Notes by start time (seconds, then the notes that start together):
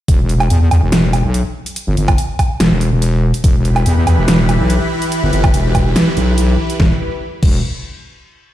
0.08 E1, kick, closed hi-hat
0.29 closed hi-hat
0.40 closed hi-hat, low woodblock
0.50 E2, closed hi-hat
0.71 E2, closed hi-hat, low woodblock
0.82 E1
0.92 E1, snare, closed hi-hat
1.13 closed hi-hat, low woodblock
1.24 B1
1.34 closed hi-hat
1.66 closed hi-hat
1.76 closed hi-hat
1.87 G1
1.97 G1, closed hi-hat
2.08 kick, closed hi-hat, low woodblock
2.18 closed hi-hat
2.39 kick, closed hi-hat, low woodblock
2.60 E1, snare, closed hi-hat
2.71 E1
2.81 closed hi-hat
2.92 E1
3.02 closed hi-hat
3.34 closed hi-hat
3.44 E1 E3 E4 G4 B4 B5, kick, closed hi-hat
3.65 closed hi-hat
3.76 closed hi-hat, low woodblock
3.86 E2, closed hi-hat
4.07 E2, closed hi-hat, low woodblock
4.18 E1
4.28 E1, snare, closed hi-hat
4.49 closed hi-hat, low woodblock
4.60 B1
4.70 closed hi-hat
5.02 closed hi-hat
5.12 closed hi-hat
5.23 G1
5.33 G1, closed hi-hat
5.44 kick, closed hi-hat, low woodblock
5.54 E1, closed hi-hat
5.75 kick, closed hi-hat, low woodblock
5.96 snare, closed hi-hat
6.17 B1, closed hi-hat
6.38 closed hi-hat
6.70 closed hi-hat
6.80 E1 E3 E4 G4 B4 B5, kick, snare
7.43 E1, kick, crash